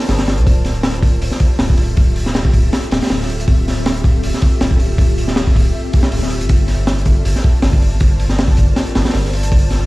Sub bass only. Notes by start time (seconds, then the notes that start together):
0.08 G1
0.37 C2
0.47 D1
1.03 D1
1.21 D1
1.59 D1
1.97 D1
2.54 D1
2.91 D1
3.10 D1
3.48 D1
4.04 D1
4.23 D1
4.61 D1
4.98 D1
5.56 D1
6.12 D1
6.41 G1
6.50 G1
7.06 G1
7.25 G1
7.63 G1
8.01 G1
8.58 G1
8.95 G1
9.14 G1
9.52 G1